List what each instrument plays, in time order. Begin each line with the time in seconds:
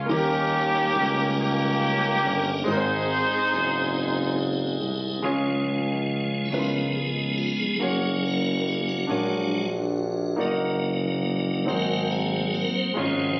0.06 grand piano D#3 A#3 C#4 D#4, tonewheel organ G3 A#3 D#4
0.10 tuba D#2, horn section A#3 C#4 G4, tonewheel organ C#4 A#4, grand piano G4 A#4
0.96 tuba C#2
1.39 horn section A#3 C#4 G4
2.24 tuba G1
2.64 tuba G#1, grand piano G#2 G#3 C4 D#4, tonewheel organ C4 D#4 F#4, horn section D#4 G#4
2.68 grand piano G#4 A#4, horn section C5
2.72 tonewheel organ G#4
2.77 grand piano C5
3.52 tuba F#1
4.81 tuba C2
5.22 tuba C#2, grand piano C#3 G#3 C#4 F4 G#4 C#5, tonewheel organ F3 G#3 C#4
6.45 tonewheel organ E4
6.51 tuba C#2, grand piano C#3 C#4 D#4 E4 A#4 B4, tonewheel organ F3 G#3 B3 D#4 F4
6.59 grand piano F4
6.97 tonewheel organ G#4
7.38 tonewheel organ F4
7.59 tonewheel organ G#4
7.79 tuba F#1, tonewheel organ F#3 A#3 C#4 G#4, grand piano A#3 C#4 F#4 A#4 C#5
8.26 tonewheel organ A#4
8.67 tonewheel organ G#4
8.83 tonewheel organ G#4
8.89 tonewheel organ F#4
9.07 tuba A#1, grand piano A#2 D4 F#4 G#4 A#4 C#5, tonewheel organ F#3 G#3 D4
9.54 tonewheel organ F#4
10.36 tuba F#1, tonewheel organ F#3, grand piano A#3 D#4 F#4 A#4 D5
10.41 tonewheel organ A#3 D#4
10.46 grand piano D#5
11.65 tuba G#1, grand piano G#2 C4 D#4 F#4 G#4 C5, tonewheel organ F#3 A#3 A#4
11.70 tonewheel organ C4
12.11 tonewheel organ G#4
12.55 tonewheel organ A#4
12.77 tonewheel organ C5
12.94 tuba G#1, grand piano G#2 G#3 C#4 F4 G#4 C#5, tonewheel organ F3 G#3
12.98 tonewheel organ C#4